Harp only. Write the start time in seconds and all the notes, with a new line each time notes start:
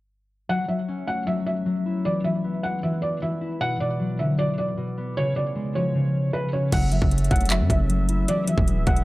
0.49 F#3
0.68 F#3
0.88 C#4
1.07 A3
1.27 F#3
1.66 F#3
1.86 E4
2.05 E3
2.25 E3
2.44 B3
2.63 G#3
2.83 E3
3.22 E3
3.41 E4
3.60 B2
3.80 B2
4.00 F#3
4.19 D3
4.38 B2
4.77 B2
4.98 B3
5.17 C#3
5.36 C#3
5.55 G#3
5.75 F3
5.95 C#3
6.34 C#3
6.54 C#4
6.73 F#3
6.92 F#3
7.12 C#4
7.30 A3
7.50 F#3
7.89 F#3
8.09 E4
8.28 E3
8.48 E3
8.68 B3
8.87 G#3